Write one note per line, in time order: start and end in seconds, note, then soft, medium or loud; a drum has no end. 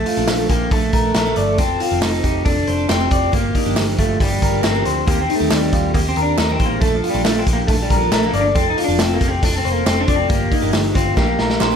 0.00 0.17 F3 medium
0.00 0.18 A3 medium
0.00 0.50 A3 loud
0.00 0.16 D4 medium
0.00 0.18 D4 medium
0.00 0.15 A4 medium
0.00 0.18 A4 medium
0.06 0.50 F4 medium
0.06 hi-hat pedal medium
0.06 open hi-hat medium
0.16 0.26 A#1 medium
0.16 0.40 A#2 medium
0.16 0.40 D3 medium
0.16 0.39 F3 medium
0.16 0.39 A#3 medium
0.16 0.38 D4 medium
0.16 0.37 A4 medium
0.27 0.46 A#1 medium
0.27 0.61 A#3 medium
0.27 0.61 D4 medium
0.27 0.62 A#4 medium
0.27 snare loud
0.27 clap medium
0.27 hi-hat pedal medium
0.27 open hi-hat medium
0.38 0.84 F3 soft
0.38 0.82 A#3 soft
0.38 0.81 D4 medium
0.38 0.80 A4 medium
0.49 0.68 A#1 loud
0.49 0.72 A#3 medium
0.49 0.71 G4 medium
0.49 kick medium
0.49 hi-hat pedal medium
0.49 open hi-hat medium
0.71 0.89 A#1 loud
0.71 1.05 A3 medium
0.71 1.12 A3 medium
0.71 1.05 D4 medium
0.71 0.93 A4 medium
0.71 1.06 A4 medium
0.71 kick medium
0.71 hi-hat pedal medium
0.71 open hi-hat medium
0.81 1.05 F3 soft
0.81 1.04 A#3 medium
0.81 1.03 D4 soft
0.81 1.02 A4 medium
0.93 1.11 A#1 medium
0.93 1.14 A#4 medium
0.93 kick medium
0.93 hi-hat pedal medium
0.93 open hi-hat medium
1.03 1.26 F3 soft
1.03 1.27 A#3 soft
1.03 1.25 D4 medium
1.03 1.24 A4 medium
1.15 1.33 A#1 loud
1.15 1.48 A3 medium
1.15 1.61 A3 medium
1.15 1.49 D4 medium
1.15 1.49 A4 medium
1.15 1.36 A#4 medium
1.15 snare loud
1.15 clap medium
1.15 hi-hat pedal medium
1.15 open hi-hat medium
1.25 1.60 A#2 medium
1.25 1.59 D3 medium
1.25 1.57 F3 medium
1.25 1.59 D4 medium
1.25 1.58 A4 medium
1.36 1.58 G1 medium
1.36 1.59 D5 medium
1.36 hi-hat pedal medium
1.36 open hi-hat medium
1.57 1.76 F1 loud
1.57 1.91 F3 medium
1.57 1.92 C4 medium
1.57 1.99 C4 loud
1.57 1.90 C4 medium
1.57 1.92 F4 medium
1.57 1.90 F4 medium
1.57 1.92 A4 medium
1.57 1.81 A4 loud
1.57 kick loud
1.57 hi-hat pedal medium
1.57 open hi-hat medium
1.61 1.89 A4 medium
1.80 2.21 F4 medium
1.80 hi-hat pedal medium
1.80 open hi-hat medium
1.90 2.01 F1 medium
1.90 2.14 F3 medium
1.90 2.13 C4 medium
1.90 2.13 F4 medium
1.90 2.11 A4 medium
2.01 2.35 C4 medium
2.01 2.45 D#4 loud
2.01 2.36 F4 medium
2.01 2.36 C5 medium
2.01 snare loud
2.01 clap loud
2.01 hi-hat pedal medium
2.01 open hi-hat medium
2.12 2.58 C4 soft
2.12 2.57 F4 soft
2.12 2.54 A4 medium
2.24 2.42 F1 loud
2.24 2.45 G4 medium
2.24 kick medium
2.24 hi-hat pedal medium
2.24 open hi-hat medium
2.44 2.64 F1 loud
2.44 2.79 C4 medium
2.44 2.86 D4 loud
2.44 2.79 F4 medium
2.44 2.79 A4 medium
2.44 2.68 A4 medium
2.44 kick loud
2.44 hi-hat pedal medium
2.44 open hi-hat loud
2.55 2.79 C4 soft
2.55 2.78 F4 medium
2.55 2.76 A4 medium
2.67 2.86 F1 loud
2.67 2.88 C5 medium
2.67 hi-hat pedal medium
2.67 open hi-hat medium
2.77 2.99 C4 soft
2.77 2.99 F4 medium
2.77 2.98 A4 medium
2.88 3.07 F1 loud
2.88 3.22 C4 medium
2.88 3.34 C4 medium
2.88 3.23 F4 medium
2.88 3.23 G4 medium
2.88 3.11 C5 medium
2.88 snare loud
2.88 clap medium
2.88 hi-hat pedal medium
2.88 open hi-hat loud
2.99 3.31 F3 medium
2.99 3.33 C4 medium
2.99 3.33 F4 medium
2.99 3.32 A4 medium
3.11 3.29 F1 medium
3.11 3.33 D5 medium
3.11 kick loud
3.11 hi-hat pedal medium
3.11 open hi-hat medium
3.32 3.51 G1 loud
3.32 3.65 F3 medium
3.32 3.66 A#3 medium
3.32 3.65 A#3 medium
3.32 3.74 A#3 medium
3.32 3.65 D4 medium
3.32 3.66 F4 medium
3.32 3.55 G4 medium
3.32 3.67 G4 medium
3.32 3.64 G4 medium
3.32 kick loud
3.32 hi-hat pedal medium
3.32 open hi-hat medium
3.55 3.96 D#4 medium
3.55 kick medium
3.55 hi-hat pedal medium
3.55 open hi-hat medium
3.65 3.75 G1 medium
3.65 3.88 G2 medium
3.65 3.88 D3 medium
3.65 3.88 F3 medium
3.65 3.87 A#3 medium
3.65 3.86 D4 medium
3.65 3.85 G4 medium
3.75 3.95 G1 medium
3.75 4.10 A#3 medium
3.75 4.10 F4 medium
3.75 4.10 G4 medium
3.75 snare loud
3.75 clap medium
3.75 hi-hat pedal medium
3.75 open hi-hat loud
3.86 4.32 F3 soft
3.86 4.32 A#3 soft
3.86 4.30 D4 soft
3.86 4.30 G4 medium
3.98 4.16 G1 loud
3.98 4.20 A3 medium
3.98 4.21 F4 medium
3.98 kick medium
3.98 hi-hat pedal medium
3.98 open hi-hat medium
4.19 4.38 G1 loud
4.19 4.62 G3 medium
4.19 4.53 A#3 medium
4.19 4.54 F4 medium
4.19 4.54 G4 medium
4.19 4.43 G4 medium
4.19 kick loud
4.19 snare soft
4.19 hi-hat pedal medium
4.19 open hi-hat loud
4.30 4.54 F3 soft
4.30 4.53 A#3 soft
4.30 4.52 D4 soft
4.30 4.51 G4 medium
4.42 4.60 G1 loud
4.42 4.63 A#4 medium
4.42 kick medium
4.42 hi-hat pedal medium
4.42 open hi-hat medium
4.52 4.75 F3 soft
4.52 4.74 A#3 soft
4.52 4.74 D4 medium
4.52 4.73 G4 medium
4.63 4.82 G1 loud
4.63 4.97 A#3 medium
4.63 5.07 C4 loud
4.63 4.97 F4 medium
4.63 4.98 G4 medium
4.63 4.85 A#4 medium
4.63 snare loud
4.63 clap medium
4.63 hi-hat pedal medium
4.63 open hi-hat loud
4.74 5.08 G2 medium
4.74 5.08 D3 medium
4.74 5.06 F3 medium
4.74 5.07 A#3 medium
4.74 5.07 D4 medium
4.74 5.07 G4 medium
4.85 5.04 D2 medium
4.85 5.08 C5 medium
4.85 hi-hat pedal medium
4.85 open hi-hat medium
5.06 5.25 D#2 loud
5.06 5.40 G3 medium
5.06 5.21 A#3 loud
5.06 5.40 C4 medium
5.06 5.39 C4 medium
5.06 5.41 D#4 medium
5.06 5.41 G4 medium
5.06 5.29 G4 medium
5.06 5.39 G4 medium
5.06 5.38 A#4 medium
5.06 kick loud
5.06 hi-hat pedal medium
5.06 open hi-hat medium
5.21 5.36 C4 medium
5.29 5.70 D#4 medium
5.29 hi-hat pedal medium
5.29 open hi-hat medium
5.36 5.50 A3 medium
5.36 5.60 A#4 medium
5.40 5.49 D#2 medium
5.40 5.63 D#3 medium
5.40 5.62 G3 medium
5.40 5.62 C4 medium
5.40 5.62 G4 medium
5.50 5.69 D#2 medium
5.50 5.93 G3 medium
5.50 5.84 C4 medium
5.50 5.84 D#4 medium
5.50 5.85 G4 medium
5.50 snare loud
5.50 clap loud
5.50 hi-hat pedal medium
5.50 open hi-hat loud
5.61 6.07 C4 soft
5.61 6.05 G4 medium
5.61 6.04 A#4 medium
5.73 5.91 D#2 loud
5.73 5.94 F4 medium
5.73 kick medium
5.73 hi-hat pedal medium
5.73 open hi-hat medium
5.94 6.12 D#2 loud
5.94 5.99 A#3 loud
5.94 6.28 C4 medium
5.94 6.28 D#4 medium
5.94 6.16 G4 medium
5.94 6.28 G4 medium
5.94 kick loud
5.94 hi-hat pedal medium
5.94 open hi-hat loud
6.05 6.28 C4 soft
6.05 6.26 G4 soft
6.05 6.25 A#4 medium
6.09 6.22 C4 medium
6.16 6.34 D#2 loud
6.16 6.37 A#4 medium
6.16 hi-hat pedal medium
6.16 open hi-hat medium
6.22 6.37 D4 loud
6.22 6.47 A#4 medium
6.28 6.49 C4 soft
6.28 6.48 G4 medium
6.37 6.56 D#2 loud
6.37 6.71 C4 medium
6.37 6.52 D#4 loud
6.37 6.71 D#4 medium
6.37 6.59 A#4 medium
6.37 6.72 A#4 medium
6.37 snare loud
6.37 clap medium
6.37 hi-hat pedal medium
6.37 open hi-hat loud
6.48 6.83 D#3 medium
6.48 6.80 G3 medium
6.48 6.82 C4 medium
6.48 6.67 C4 loud
6.48 6.82 G4 medium
6.48 6.81 A#4 medium
6.59 6.78 A1 loud
6.59 6.81 C5 medium
6.59 kick loud
6.59 hi-hat pedal medium
6.59 open hi-hat medium
6.66 6.80 A#3 medium
6.80 7.00 A#1 loud
6.80 7.14 F3 medium
6.80 6.95 A3 loud
6.80 7.15 A#3 medium
6.80 7.13 A#3 medium
6.80 7.15 D4 medium
6.80 7.13 D4 medium
6.80 7.04 A4 medium
6.80 7.15 A4 medium
6.80 7.12 A4 medium
6.80 kick loud
6.80 hi-hat pedal medium
6.80 open hi-hat medium
6.95 7.09 F3 medium
7.03 7.44 F4 medium
7.03 hi-hat pedal medium
7.03 open hi-hat medium
7.10 7.24 G3 loud
7.10 7.34 A4 medium
7.14 7.23 A#1 medium
7.14 7.37 A#2 medium
7.14 7.37 D3 medium
7.14 7.37 F3 medium
7.14 7.36 A#3 medium
7.14 7.35 D4 medium
7.24 7.43 A#1 medium
7.24 7.40 A3 loud
7.24 7.58 A#3 medium
7.24 7.59 D4 medium
7.24 7.59 A4 medium
7.24 snare loud
7.24 clap loud
7.24 hi-hat pedal medium
7.24 open hi-hat medium
7.35 7.82 F3 soft
7.35 7.80 A#3 soft
7.35 7.44 C4 medium
7.35 7.79 D4 medium
7.35 7.79 A4 medium
7.47 7.65 A#1 loud
7.47 7.69 G4 medium
7.47 kick medium
7.47 hi-hat pedal medium
7.47 open hi-hat medium
7.53 7.58 A#3 medium
7.67 7.87 A#1 loud
7.67 7.72 A3 medium
7.67 8.02 A#3 medium
7.67 8.02 D4 medium
7.67 7.90 A4 medium
7.67 8.03 A4 medium
7.67 kick loud
7.67 snare soft
7.67 hi-hat pedal medium
7.67 open hi-hat loud
7.79 8.03 F3 soft
7.79 7.98 G3 medium
7.79 8.01 A#3 soft
7.79 8.00 D4 medium
7.79 7.99 A4 medium
7.90 8.08 A#1 medium
7.90 8.11 A#4 medium
7.90 kick medium
7.90 hi-hat pedal medium
7.90 open hi-hat medium
7.97 8.12 F3 medium
8.01 8.23 F3 soft
8.01 8.22 A#3 medium
8.01 8.22 D4 medium
8.01 8.21 A4 medium
8.11 8.30 A#1 loud
8.11 8.26 A3 medium
8.11 8.46 A#3 medium
8.11 8.46 D4 medium
8.11 8.46 A4 medium
8.11 8.33 A#4 medium
8.11 snare loud
8.11 clap medium
8.11 hi-hat pedal medium
8.11 open hi-hat medium
8.23 8.57 A#2 medium
8.23 8.57 D3 medium
8.23 8.54 F3 medium
8.23 8.56 A#3 medium
8.23 8.42 A#3 medium
8.23 8.56 D4 medium
8.23 8.56 A4 medium
8.33 8.56 G1 medium
8.33 8.56 D5 medium
8.33 hi-hat pedal medium
8.33 open hi-hat medium
8.41 8.46 D4 medium
8.55 8.74 F1 loud
8.55 8.88 F3 medium
8.55 8.89 C4 medium
8.55 8.70 C4 loud
8.55 8.89 C4 medium
8.55 8.89 F4 medium
8.55 8.88 F4 medium
8.55 8.77 A4 medium
8.55 8.89 A4 medium
8.55 8.87 A4 medium
8.55 kick loud
8.55 hi-hat pedal medium
8.55 open hi-hat medium
8.70 8.84 D#4 medium
8.77 9.18 F4 medium
8.77 hi-hat pedal medium
8.77 open hi-hat medium
8.84 8.99 D4 loud
8.84 9.08 A4 medium
8.88 8.98 F1 medium
8.88 9.11 F3 medium
8.88 9.11 C4 medium
8.88 9.10 F4 medium
8.98 9.18 F1 medium
8.98 9.33 C4 medium
8.98 9.14 C4 medium
8.98 9.33 F4 medium
8.98 9.33 A4 medium
8.98 snare loud
8.98 clap loud
8.98 hi-hat pedal medium
8.98 open hi-hat medium
9.10 9.55 C4 soft
9.10 9.55 F4 medium
9.10 9.52 A4 medium
9.14 9.28 A#3 medium
9.21 9.39 F1 loud
9.21 9.43 G4 medium
9.21 kick loud
9.21 hi-hat pedal medium
9.21 open hi-hat medium
9.28 9.43 C4 medium
9.42 9.61 F1 loud
9.42 9.76 C4 medium
9.42 9.57 D4 medium
9.42 9.76 F4 medium
9.42 9.65 A4 medium
9.42 9.77 A4 medium
9.42 kick loud
9.42 snare soft
9.42 hi-hat pedal medium
9.42 open hi-hat loud
9.53 9.77 C4 soft
9.53 9.75 F4 medium
9.53 9.74 A4 medium
9.58 9.71 C4 medium
9.65 9.83 F1 loud
9.65 9.86 C5 medium
9.65 hi-hat pedal medium
9.65 open hi-hat medium
9.72 9.85 A#3 medium
9.72 9.95 A4 medium
9.77 9.97 C4 soft
9.77 9.96 F4 soft
9.85 10.05 F1 loud
9.85 10.20 C4 medium
9.85 10.00 C4 loud
9.85 10.20 F4 medium
9.85 10.20 A4 medium
9.85 10.08 C5 medium
9.85 snare loud
9.85 clap medium
9.85 hi-hat pedal medium
9.85 open hi-hat loud
9.96 10.28 F3 medium
9.96 10.30 C4 medium
9.96 10.16 D4 medium
9.96 10.30 F4 medium
9.96 10.30 A4 medium
10.08 10.26 F1 medium
10.08 10.30 D5 medium
10.08 kick medium
10.08 hi-hat pedal medium
10.08 open hi-hat medium
10.16 10.29 C4 medium
10.29 10.48 G1 loud
10.29 10.62 F3 medium
10.29 10.63 A#3 medium
10.29 10.70 A#3 medium
10.29 10.61 A#3 medium
10.29 10.61 D4 medium
10.29 10.64 F4 medium
10.29 10.52 G4 medium
10.29 10.64 G4 medium
10.29 10.60 G4 medium
10.29 kick loud
10.29 hi-hat pedal medium
10.29 open hi-hat medium
10.52 10.93 D#4 medium
10.52 kick medium
10.52 hi-hat pedal medium
10.52 open hi-hat medium
10.61 10.72 G1 medium
10.61 10.85 G2 medium
10.61 10.85 D3 medium
10.61 10.85 F3 medium
10.61 10.84 A#3 medium
10.61 10.84 D4 medium
10.61 10.82 G4 medium
10.73 10.92 G1 medium
10.73 11.07 A#3 medium
10.73 11.07 F4 medium
10.73 11.07 G4 medium
10.73 snare loud
10.73 clap medium
10.73 hi-hat pedal medium
10.73 open hi-hat medium
10.83 11.16 F3 soft
10.83 11.16 A#3 soft
10.83 11.17 D4 medium
10.83 11.17 G4 medium
10.95 11.13 G1 medium
10.95 11.16 C4 loud
10.95 11.17 F4 medium
10.95 kick medium
10.95 hi-hat pedal medium
10.95 open hi-hat medium
11.16 11.35 A#1 loud
11.16 11.28 A#2 medium
11.16 11.28 D3 medium
11.16 11.28 F3 medium
11.16 11.50 A#3 medium
11.16 11.76 A#3 loud
11.16 11.28 A#3 medium
11.16 11.51 D4 medium
11.16 11.26 D4 medium
11.16 11.39 G4 medium
11.16 11.51 G4 medium
11.16 11.25 G4 medium
11.16 kick loud
11.16 snare medium
11.26 11.51 F3 soft
11.26 11.50 A#3 soft
11.26 11.49 D4 medium
11.26 11.48 G4 medium
11.39 11.57 A#1 medium
11.39 11.60 A#4 medium
11.39 snare medium
11.49 11.71 F3 soft
11.49 11.71 A#3 soft
11.49 11.71 D4 medium
11.49 11.70 G4 medium
11.49 snare medium
11.60 11.76 A#1 loud
11.60 11.76 A#3 medium
11.60 11.76 D4 medium
11.60 11.76 G4 medium
11.60 11.76 A#4 medium
11.60 11.76 C5 medium
11.60 snare medium
11.60 clap medium
11.71 11.76 F3 medium
11.71 11.76 A#3 medium
11.71 11.76 D4 medium
11.71 11.76 G4 medium